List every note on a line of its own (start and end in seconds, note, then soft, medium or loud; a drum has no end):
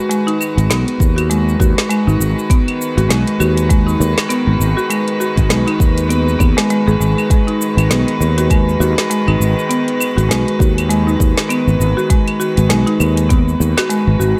0.00 14.40 D#3 medium
0.00 14.40 G#3 medium
0.00 14.40 F#4 medium
0.00 14.40 B4 medium
0.10 0.20 G#3 medium
0.10 closed hi-hat medium
0.10 shaker soft
0.27 0.39 D#4 medium
0.27 closed hi-hat soft
0.41 claves medium
0.41 shaker medium
0.57 0.67 G#1 medium
0.57 closed hi-hat soft
0.57 shaker soft
0.70 0.83 B1 medium
0.70 0.86 B3 medium
0.70 snare medium
0.70 closed hi-hat medium
0.70 shaker soft
0.88 closed hi-hat soft
1.00 1.55 D#2 medium
1.00 kick loud
1.00 shaker medium
1.16 1.28 F#4 medium
1.16 closed hi-hat soft
1.16 claves medium
1.16 shaker soft
1.30 1.46 G#3 medium
1.30 closed hi-hat medium
1.30 shaker soft
1.49 shaker soft
1.60 1.73 D#2 loud
1.60 1.89 F#4 medium
1.60 kick loud
1.60 shaker medium
1.78 snare medium
1.78 closed hi-hat soft
1.78 shaker soft
1.90 2.00 G#3 medium
1.90 closed hi-hat medium
1.90 claves medium
1.90 shaker soft
2.07 2.17 G#1 loud
2.07 2.19 D#4 medium
2.07 shaker soft
2.20 2.33 G#1 medium
2.20 shaker medium
2.39 shaker soft
2.50 2.67 B3 medium
2.50 kick loud
2.50 closed hi-hat medium
2.50 shaker medium
2.68 closed hi-hat soft
2.68 claves medium
2.82 shaker medium
2.97 3.07 G#1 loud
2.97 3.09 F#4 medium
2.97 closed hi-hat soft
2.97 shaker soft
3.09 3.23 B1 medium
3.09 3.26 G#3 medium
3.09 snare medium
3.09 closed hi-hat medium
3.09 shaker medium
3.27 closed hi-hat soft
3.40 3.95 D#2 medium
3.40 3.69 F#4 medium
3.40 claves medium
3.40 shaker medium
3.57 closed hi-hat soft
3.57 shaker soft
3.70 3.80 G#3 medium
3.70 kick loud
3.70 closed hi-hat medium
3.70 shaker soft
3.87 3.99 D#4 medium
3.87 shaker soft
4.00 4.13 D#2 loud
4.00 shaker medium
4.18 snare medium
4.18 closed hi-hat soft
4.18 claves medium
4.18 shaker soft
4.29 4.46 B3 medium
4.29 closed hi-hat medium
4.29 shaker soft
4.47 4.57 G#1 medium
4.60 4.73 G#1 medium
4.60 shaker medium
4.77 4.89 F#4 medium
4.77 shaker soft
4.90 5.06 G#3 medium
4.90 closed hi-hat medium
4.90 claves medium
4.90 shaker soft
5.08 closed hi-hat soft
5.20 5.49 F#4 medium
5.20 shaker medium
5.37 5.47 G#1 medium
5.37 kick medium
5.37 closed hi-hat soft
5.37 shaker soft
5.50 5.63 B1 medium
5.50 5.60 G#3 medium
5.50 snare medium
5.50 closed hi-hat medium
5.50 shaker soft
5.67 5.79 D#4 medium
5.67 closed hi-hat soft
5.67 claves medium
5.80 6.35 D#2 medium
5.80 kick loud
5.80 shaker medium
5.98 closed hi-hat soft
5.98 shaker soft
6.09 6.26 B3 medium
6.09 closed hi-hat medium
6.09 shaker soft
6.29 shaker soft
6.39 6.53 D#2 loud
6.39 6.56 B3 medium
6.39 kick loud
6.39 claves medium
6.39 shaker medium
6.57 6.69 G#3 loud
6.57 snare medium
6.57 closed hi-hat soft
6.57 shaker soft
6.70 6.86 G#3 loud
6.70 closed hi-hat medium
6.70 shaker soft
6.87 6.97 G#1 medium
6.87 6.95 G#4 loud
6.87 shaker soft
7.00 7.13 G#1 medium
7.00 7.17 G#3 medium
7.00 shaker medium
7.18 claves medium
7.18 shaker soft
7.30 7.40 G#3 medium
7.30 kick loud
7.30 closed hi-hat medium
7.30 shaker soft
7.47 7.59 D#4 medium
7.47 closed hi-hat soft
7.62 shaker medium
7.77 7.87 G#1 loud
7.77 closed hi-hat soft
7.77 claves medium
7.77 shaker soft
7.90 8.03 B1 medium
7.90 8.06 B3 medium
7.90 snare medium
7.90 closed hi-hat medium
7.90 shaker soft
8.08 closed hi-hat soft
8.21 8.75 D#2 medium
8.21 shaker medium
8.38 8.49 F#4 medium
8.38 closed hi-hat soft
8.38 shaker soft
8.50 8.67 G#3 medium
8.50 kick loud
8.50 closed hi-hat medium
8.50 claves medium
8.50 shaker soft
8.69 shaker soft
8.80 8.93 D#2 loud
8.80 9.09 F#4 medium
8.80 shaker medium
8.98 snare medium
8.98 closed hi-hat soft
8.98 shaker soft
9.10 9.20 G#3 medium
9.10 closed hi-hat medium
9.10 shaker soft
9.27 9.37 G#1 loud
9.27 9.40 D#4 medium
9.27 claves medium
9.40 9.53 G#1 medium
9.40 shaker medium
9.59 shaker soft
9.69 9.86 B3 medium
9.69 closed hi-hat medium
9.69 shaker soft
9.88 closed hi-hat soft
10.00 claves medium
10.00 shaker medium
10.17 10.27 G#1 loud
10.17 10.29 F#4 medium
10.17 closed hi-hat soft
10.17 shaker soft
10.29 10.43 B1 medium
10.29 10.46 G#3 medium
10.29 snare medium
10.29 closed hi-hat medium
10.29 shaker soft
10.48 closed hi-hat soft
10.59 11.15 D#2 medium
10.59 10.88 F#4 medium
10.59 kick loud
10.59 shaker medium
10.78 closed hi-hat soft
10.78 claves medium
10.78 shaker soft
10.89 11.00 G#3 medium
10.89 closed hi-hat medium
10.89 shaker soft
11.07 11.19 D#4 medium
11.07 shaker soft
11.20 11.33 D#2 loud
11.20 kick loud
11.20 shaker medium
11.38 snare medium
11.38 closed hi-hat soft
11.38 shaker soft
11.49 11.66 B3 medium
11.49 closed hi-hat medium
11.49 claves medium
11.49 shaker soft
11.67 11.77 G#1 medium
11.67 shaker soft
11.80 11.93 G#1 medium
11.80 shaker medium
11.97 12.09 F#4 medium
11.97 shaker soft
12.10 12.26 G#3 medium
12.10 kick loud
12.10 closed hi-hat medium
12.10 shaker soft
12.28 closed hi-hat soft
12.28 claves medium
12.40 12.69 F#4 medium
12.40 shaker medium
12.57 12.67 G#1 loud
12.57 closed hi-hat soft
12.57 shaker soft
12.70 12.83 B1 medium
12.70 12.80 G#3 medium
12.70 snare medium
12.70 closed hi-hat medium
12.70 shaker soft
12.87 12.99 D#4 medium
12.87 closed hi-hat soft
13.00 13.55 D#2 medium
13.00 claves medium
13.00 shaker medium
13.17 closed hi-hat soft
13.17 shaker soft
13.29 13.46 B3 medium
13.29 kick loud
13.29 closed hi-hat medium
13.29 shaker soft
13.48 shaker soft
13.60 13.73 D#2 loud
13.60 shaker medium
13.77 13.89 F#4 medium
13.77 snare medium
13.77 closed hi-hat soft
13.77 claves medium
13.77 shaker soft
13.90 14.06 G#3 medium
13.90 closed hi-hat medium
13.90 shaker soft
14.07 14.17 G#1 loud
14.20 14.33 G#1 medium
14.20 14.40 F#4 medium
14.20 shaker medium